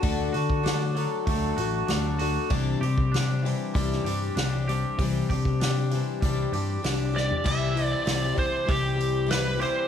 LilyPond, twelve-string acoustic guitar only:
\new Staff \with { instrumentName = "Twelve-string acoustic guitar" } { \time 4/4 \key c \lydian \tempo 4 = 97 <d a d' fis' a'>8 <d' fis' a'>8 <a d' fis' a'>8 <d' fis' a'>8 <d a d' fis' a'>8 <d' fis' a'>8 <a d' fis' a'>8 <d' fis' a'>8 | <c e g c' d' g'>8 <g c' d' g'>8 <g c' d' g'>8 <g c' d' g'>8 <c e g c' d' g'>8 <g c' d' g'>8 <g c' d' g'>8 <g c' d' g'>8 | <c e g c' d' g'>8 <g c' d' g'>8 <g c' d' g'>8 <g c' d' g'>8 <c e g c' d' g'>8 <g c' d' g'>8 <g c' d' g'>8 <g c' d' g'>8 | <c g c' e' g'>8 <c' e' g'>8 <c g c' e' g'>8 <c' e' g'>8 <g c' e' g'>8 <c' e' g'>8 <c g c' e' g'>8 <c' e' g'>8 | }